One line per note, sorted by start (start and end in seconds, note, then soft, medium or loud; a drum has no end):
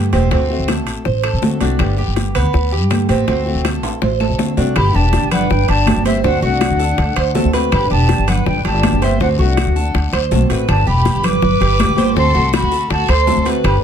0.00 0.11 G2 medium
0.00 0.12 D3 soft
0.00 0.12 G3 soft
0.00 0.13 B3 medium
0.00 0.12 G4 medium
0.13 0.30 E1 medium
0.13 0.31 G3 medium
0.13 0.31 B3 medium
0.13 0.30 C4 medium
0.13 0.31 G4 medium
0.13 high conga medium
0.13 high timbale medium
0.13 short guiro medium
0.31 0.57 D2 medium
0.31 0.49 D3 medium
0.31 0.49 A3 medium
0.31 0.67 C4 medium
0.31 0.50 C4 medium
0.31 0.49 F#4 medium
0.31 high bongo medium
0.31 high timbale medium
0.31 long guiro medium
0.49 1.05 A3 medium
0.49 1.05 C4 medium
0.49 1.05 F#4 medium
0.49 high bongo soft
0.49 high conga soft
0.59 0.87 D2 medium
0.68 1.04 A4 medium
0.68 high bongo medium
0.68 high conga medium
0.68 high timbale medium
0.68 short guiro medium
0.68 claves medium
0.87 0.96 A1 medium
0.87 high bongo soft
0.87 high conga soft
0.87 high timbale medium
0.87 short guiro medium
1.05 1.35 A1 medium
1.05 1.23 C5 medium
1.05 muted nylon-string guitar stroke medium
1.05 high bongo medium
1.05 high conga soft
1.05 long guiro medium
1.23 1.60 A4 medium
1.23 high bongo soft
1.23 high conga soft
1.23 high timbale loud
1.23 claves medium
1.33 1.60 D3 medium
1.42 1.60 D3 soft
1.42 1.61 A3 soft
1.42 1.60 C4 medium
1.42 1.60 F#4 soft
1.42 high bongo medium
1.42 low bongo medium
1.42 high conga medium
1.42 low timbale medium
1.42 short guiro medium
1.60 1.79 C2 medium
1.60 1.80 A3 medium
1.60 1.79 C4 medium
1.60 1.97 D4 medium
1.60 1.79 F#4 medium
1.60 high conga medium
1.60 high timbale medium
1.60 short guiro medium
1.79 2.06 G1 medium
1.79 1.97 D3 medium
1.79 1.98 G3 medium
1.79 1.98 B3 medium
1.79 1.97 G4 medium
1.79 high bongo medium
1.79 high conga soft
1.79 high timbale medium
1.79 long guiro medium
1.79 claves medium
1.98 2.53 G3 soft
1.98 2.53 B3 medium
1.98 2.34 G4 medium
1.98 2.53 G4 medium
1.98 high conga soft
2.07 2.36 G1 medium
2.16 high bongo medium
2.16 high conga medium
2.16 high timbale medium
2.16 short guiro medium
2.35 2.44 D2 medium
2.35 2.71 B3 medium
2.35 high conga soft
2.35 high timbale medium
2.35 short guiro medium
2.35 claves medium
2.53 2.81 D2 medium
2.53 muted nylon-string guitar stroke medium
2.53 high bongo medium
2.53 high conga soft
2.53 long guiro medium
2.72 3.08 G4 medium
2.72 high conga soft
2.81 3.08 G2 medium
2.90 3.08 D3 medium
2.90 3.09 G3 soft
2.90 3.09 B3 medium
2.90 3.07 G4 medium
2.90 high bongo medium
2.90 low bongo medium
2.90 high conga medium
2.90 high timbale medium
2.90 short guiro medium
2.90 claves medium
3.09 3.27 A1 loud
3.09 3.28 G3 medium
3.09 3.27 B3 medium
3.09 3.27 C4 medium
3.09 3.27 G4 medium
3.09 high conga medium
3.09 high timbale medium
3.09 short guiro medium
3.28 3.54 D2 medium
3.28 3.46 D3 medium
3.28 3.46 A3 medium
3.28 3.64 C4 medium
3.28 3.46 C4 medium
3.28 3.45 F#4 medium
3.28 high bongo medium
3.28 high conga soft
3.28 high timbale medium
3.28 long guiro medium
3.46 4.01 A3 medium
3.46 4.01 C4 medium
3.46 4.01 F#4 medium
3.46 high bongo soft
3.46 high conga soft
3.55 3.83 D2 medium
3.65 4.01 A4 medium
3.65 high bongo medium
3.65 high conga medium
3.65 high timbale medium
3.65 short guiro medium
3.65 claves medium
3.83 3.92 A1 medium
3.83 high bongo soft
3.83 high conga soft
3.83 high timbale medium
3.83 short guiro medium
4.02 4.31 A1 medium
4.02 4.20 C5 medium
4.02 muted nylon-string guitar stroke medium
4.02 high bongo medium
4.02 low timbale medium
4.02 long guiro medium
4.20 4.56 A4 medium
4.20 high bongo soft
4.20 high conga soft
4.20 low timbale medium
4.20 claves medium
4.30 4.56 D3 medium
4.39 4.57 D3 soft
4.39 4.57 A3 soft
4.39 4.57 C4 soft
4.39 4.56 F#4 medium
4.39 high bongo medium
4.39 low bongo medium
4.39 high conga medium
4.39 low timbale medium
4.39 short guiro medium
4.57 4.75 C2 medium
4.57 4.76 A3 medium
4.57 4.76 C4 medium
4.57 4.76 D4 medium
4.57 4.75 F#4 medium
4.57 low timbale medium
4.57 short guiro medium
4.76 4.94 G1 loud
4.76 4.94 D3 medium
4.76 4.94 G3 medium
4.76 4.94 B3 medium
4.76 4.94 G4 medium
4.76 4.93 G4 medium
4.76 4.97 B5 loud
4.76 high bongo medium
4.76 high conga soft
4.76 high timbale loud
4.76 long guiro medium
4.76 claves medium
4.94 5.21 E1 medium
4.94 5.49 G3 medium
4.94 5.49 B3 medium
4.94 5.31 D4 medium
4.94 5.49 G4 medium
4.94 5.30 G4 medium
4.94 5.31 A5 loud
4.94 high conga soft
5.13 high bongo medium
5.13 high conga medium
5.13 high timbale medium
5.13 low timbale medium
5.13 short guiro medium
5.22 5.49 G1 medium
5.31 5.49 D4 medium
5.31 5.68 B4 medium
5.31 5.52 F#5 medium
5.31 high bongo soft
5.31 high conga soft
5.31 low conga medium
5.31 high timbale medium
5.31 short guiro medium
5.31 claves medium
5.50 5.68 G1 medium
5.50 5.67 D4 medium
5.50 5.68 G5 medium
5.50 muted nylon-string guitar stroke medium
5.50 high bongo medium
5.50 high conga soft
5.50 long guiro medium
5.68 5.95 G1 medium
5.68 6.03 D4 medium
5.68 6.04 G4 medium
5.68 6.03 A5 loud
5.68 high bongo soft
5.68 high conga soft
5.68 high timbale medium
5.86 6.05 D3 soft
5.86 6.05 G3 soft
5.86 6.05 B3 medium
5.86 6.04 G4 medium
5.86 high bongo soft
5.86 low bongo medium
5.86 high conga medium
5.86 high timbale loud
5.86 low timbale medium
5.86 short guiro medium
5.86 claves medium
5.96 6.23 G1 medium
6.05 6.24 G3 medium
6.05 6.24 B3 medium
6.05 6.23 C4 medium
6.05 6.23 G4 medium
6.05 6.24 C5 medium
6.05 6.23 E5 medium
6.05 high bongo soft
6.05 high conga medium
6.05 high timbale medium
6.05 short guiro medium
6.24 6.42 D2 loud
6.24 6.42 D3 medium
6.24 6.42 A3 medium
6.24 6.42 C4 medium
6.24 6.41 D4 medium
6.24 6.41 F#4 medium
6.24 6.42 F#5 medium
6.24 high bongo medium
6.24 high conga soft
6.24 long guiro medium
6.42 6.69 C2 medium
6.42 6.98 A3 medium
6.42 6.98 C4 medium
6.42 7.50 D4 medium
6.42 6.79 F#4 medium
6.42 6.97 F#4 medium
6.42 7.50 F#5 medium
6.42 high conga soft
6.61 high bongo medium
6.61 high conga medium
6.61 high timbale medium
6.61 low timbale medium
6.61 short guiro medium
6.61 claves medium
6.70 6.97 D2 medium
6.79 7.15 A4 medium
6.79 high bongo soft
6.79 high conga soft
6.79 short guiro medium
6.98 7.16 D2 medium
6.98 muted nylon-string guitar stroke medium
6.98 high bongo medium
6.98 high conga soft
6.98 high timbale medium
6.98 long guiro medium
7.16 7.43 D2 loud
7.16 7.35 C5 medium
7.16 high bongo soft
7.16 high conga soft
7.16 high timbale loud
7.16 claves medium
7.34 7.53 D3 soft
7.34 7.53 A3 soft
7.34 7.53 C4 soft
7.34 7.52 F#4 medium
7.34 7.53 A4 medium
7.34 high bongo soft
7.34 low bongo medium
7.34 high conga medium
7.34 low timbale medium
7.34 short guiro medium
7.44 7.71 D2 medium
7.53 7.72 A3 medium
7.53 7.72 C4 medium
7.53 7.71 F#4 medium
7.53 7.90 B4 medium
7.53 high bongo soft
7.53 high conga soft
7.53 high timbale medium
7.53 short guiro medium
7.72 7.90 G1 loud
7.72 7.90 D3 medium
7.72 7.90 G3 medium
7.72 7.90 B3 medium
7.72 7.89 G4 medium
7.72 7.90 G4 medium
7.72 7.90 B5 loud
7.72 high bongo medium
7.72 high conga soft
7.72 high timbale medium
7.72 long guiro medium
7.72 claves medium
7.90 8.17 E1 medium
7.90 8.46 G3 soft
7.90 8.46 B3 medium
7.90 8.25 D4 medium
7.90 8.27 G4 medium
7.90 8.46 G4 medium
7.90 8.30 A5 loud
7.90 high conga soft
8.09 high bongo medium
8.09 high conga medium
8.09 high timbale medium
8.09 low timbale medium
8.09 short guiro medium
8.18 8.45 G1 medium
8.27 8.45 D4 medium
8.27 8.64 B4 medium
8.27 8.47 F#5 medium
8.27 high bongo soft
8.27 high conga soft
8.27 low conga medium
8.27 high timbale medium
8.27 short guiro medium
8.27 claves medium
8.46 8.64 G1 medium
8.46 8.64 D4 medium
8.46 8.64 G5 medium
8.46 muted nylon-string guitar stroke medium
8.46 high bongo medium
8.46 high conga soft
8.46 long guiro medium
8.65 8.91 G1 loud
8.65 8.99 D4 medium
8.65 9.01 G4 medium
8.65 9.05 A5 loud
8.65 high bongo soft
8.65 high conga soft
8.65 high timbale medium
8.83 9.01 D3 soft
8.83 9.01 G3 medium
8.83 9.01 B3 medium
8.83 9.00 G4 soft
8.83 high bongo soft
8.83 low bongo medium
8.83 high conga medium
8.83 high timbale loud
8.83 low timbale medium
8.83 short guiro medium
8.83 claves medium
8.92 9.19 G1 medium
9.02 9.20 G3 medium
9.02 9.20 B3 medium
9.02 9.20 C4 medium
9.02 9.20 G4 medium
9.02 9.20 C5 medium
9.02 9.21 E5 medium
9.02 high bongo soft
9.02 high conga medium
9.02 high timbale medium
9.02 short guiro medium
9.20 9.38 D2 loud
9.20 9.38 D3 medium
9.20 9.38 A3 medium
9.20 9.38 C4 medium
9.20 9.29 D4 medium
9.20 9.37 F#4 medium
9.20 9.28 F#5 medium
9.20 high bongo medium
9.20 long guiro medium
9.39 9.65 C2 medium
9.39 9.94 A3 medium
9.39 9.94 C4 medium
9.39 10.19 D4 medium
9.39 9.75 F#4 medium
9.39 9.94 F#4 medium
9.39 10.19 F#5 medium
9.39 high conga soft
9.57 high bongo medium
9.57 high conga medium
9.57 high timbale medium
9.57 low timbale medium
9.57 short guiro medium
9.57 claves medium
9.67 9.93 D2 medium
9.76 10.12 A4 medium
9.76 high bongo soft
9.76 high conga soft
9.76 short guiro medium
9.94 10.12 D2 loud
9.94 muted nylon-string guitar stroke medium
9.94 high bongo medium
9.94 high conga soft
9.94 high timbale medium
9.94 long guiro medium
10.13 10.30 D2 medium
10.13 10.31 C5 medium
10.13 high bongo soft
10.13 high conga soft
10.13 high timbale loud
10.13 claves medium
10.31 10.48 B1 medium
10.31 10.49 D3 soft
10.31 10.49 A3 soft
10.31 10.49 C4 medium
10.31 10.48 F#4 medium
10.31 10.49 A4 medium
10.31 high bongo soft
10.31 low bongo medium
10.31 high conga medium
10.31 low timbale medium
10.31 short guiro medium
10.50 10.66 A1 medium
10.50 10.68 A3 medium
10.50 10.68 C4 medium
10.50 10.68 F#4 medium
10.50 10.86 B4 medium
10.50 high bongo soft
10.50 high conga soft
10.50 high timbale medium
10.50 short guiro medium
10.68 10.86 G1 loud
10.68 10.86 D3 medium
10.68 10.86 G3 medium
10.68 10.86 B3 medium
10.68 10.86 D4 medium
10.68 10.85 G4 medium
10.68 10.86 A5 loud
10.68 high bongo medium
10.68 high conga soft
10.68 high timbale medium
10.68 long guiro medium
10.68 claves medium
10.86 11.14 E1 medium
10.86 11.41 G3 medium
10.86 11.41 B3 medium
10.86 11.41 G4 medium
10.86 11.21 G4 medium
10.86 11.23 G4 medium
10.86 11.27 B5 loud
10.86 high conga soft
11.05 high bongo medium
11.05 high conga medium
11.05 high timbale medium
11.05 low timbale medium
11.05 short guiro medium
11.15 11.41 G1 medium
11.23 12.16 B4 loud
11.23 11.60 B4 medium
11.23 12.17 D6 loud
11.23 high bongo soft
11.23 high conga soft
11.23 low conga medium
11.23 high timbale medium
11.23 short guiro medium
11.23 claves medium
11.42 11.60 G1 medium
11.42 muted nylon-string guitar stroke medium
11.42 high bongo medium
11.42 high conga soft
11.42 low conga medium
11.42 long guiro medium
11.61 11.87 G1 loud
11.61 11.97 G4 medium
11.61 high bongo soft
11.61 high conga soft
11.61 high timbale medium
11.79 11.97 D3 soft
11.79 11.97 G3 soft
11.79 11.97 B3 soft
11.79 11.95 G4 medium
11.79 high bongo soft
11.79 low bongo medium
11.79 high conga medium
11.79 high timbale loud
11.79 low timbale medium
11.79 short guiro medium
11.79 claves medium
11.88 12.15 G1 medium
11.97 12.16 G3 medium
11.97 12.16 B3 medium
11.97 12.15 G4 medium
11.97 12.16 C5 medium
11.97 high bongo soft
11.97 high conga medium
11.97 high timbale medium
11.97 short guiro medium
12.16 12.34 D2 loud
12.16 12.34 D3 medium
12.16 12.34 A3 medium
12.16 12.34 C4 medium
12.16 12.34 F#4 medium
12.16 12.51 A4 medium
12.16 12.51 C6 loud
12.16 high bongo medium
12.16 long guiro medium
12.34 12.61 C2 medium
12.34 12.90 A3 medium
12.34 12.90 C4 medium
12.34 12.71 F#4 medium
12.34 12.90 F#4 medium
12.53 12.88 F#4 medium
12.53 12.88 B5 loud
12.53 high bongo medium
12.53 high conga medium
12.53 high timbale loud
12.53 low timbale medium
12.53 short guiro medium
12.53 claves medium
12.62 12.89 D2 medium
12.71 13.08 A4 medium
12.71 high bongo soft
12.71 high conga soft
12.71 short guiro medium
12.90 13.08 D2 medium
12.90 13.08 F#4 medium
12.90 13.11 A5 loud
12.90 muted nylon-string guitar stroke medium
12.90 high bongo medium
12.90 high conga soft
12.90 high timbale medium
12.90 long guiro medium
13.09 13.35 D2 medium
13.09 13.46 A4 medium
13.09 13.27 C5 medium
13.09 13.46 C6 loud
13.09 high bongo soft
13.09 high conga soft
13.09 high timbale loud
13.09 claves medium
13.27 13.45 D3 soft
13.27 13.46 A3 soft
13.27 13.45 C4 medium
13.27 13.45 F#4 medium
13.27 13.45 A4 medium
13.27 high bongo soft
13.27 low bongo medium
13.27 high conga medium
13.27 low timbale medium
13.27 short guiro medium
13.36 13.63 D2 medium
13.45 13.64 A3 medium
13.45 13.64 C4 medium
13.45 13.64 F#4 medium
13.45 13.82 B4 medium
13.45 high bongo soft
13.45 high timbale medium
13.45 short guiro medium
13.64 13.82 G1 loud
13.64 13.82 D3 medium
13.64 13.82 G3 medium
13.64 13.82 B3 medium
13.64 13.82 G4 medium
13.64 13.82 B5 loud
13.64 high bongo medium
13.64 high conga soft
13.64 high timbale medium
13.64 long guiro medium
13.64 claves medium